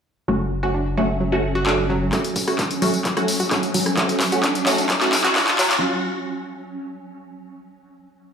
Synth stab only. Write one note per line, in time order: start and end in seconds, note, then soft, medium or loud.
0.28 0.60 A3 medium
0.28 0.60 C#4 medium
0.28 0.60 F#4 medium
0.63 0.72 A3 medium
0.63 0.72 C#4 medium
0.63 0.72 F#4 medium
0.97 1.07 A3 loud
0.97 1.07 C#4 medium
0.97 1.07 F#4 loud
1.32 1.41 A3 loud
1.32 1.41 C#4 medium
1.32 1.41 F#4 loud
1.67 1.76 A3 medium
1.67 1.76 C#4 medium
1.67 1.76 F#4 medium
2.13 2.45 A3 medium
2.13 2.45 C#4 medium
2.13 2.45 F#4 medium
2.48 2.56 A3 medium
2.48 2.56 C#4 medium
2.48 2.56 F#4 medium
2.82 2.91 A3 loud
2.82 2.91 C#4 medium
2.82 2.91 F#4 loud
3.17 3.26 A3 loud
3.17 3.26 C#4 medium
3.17 3.26 F#4 loud
3.51 3.60 A3 medium
3.51 3.60 C#4 medium
3.51 3.60 F#4 medium
3.97 4.29 A3 medium
3.97 4.29 C#4 medium
3.97 4.29 F#4 medium
4.32 4.41 A3 medium
4.32 4.41 C#4 medium
4.32 4.41 F#4 medium
4.67 4.76 A3 loud
4.67 4.76 C#4 medium
4.67 4.76 F#4 loud
5.01 5.10 A3 loud
5.01 5.10 C#4 medium
5.01 5.10 F#4 loud
5.36 5.45 A3 medium
5.36 5.45 C#4 medium
5.36 5.45 F#4 medium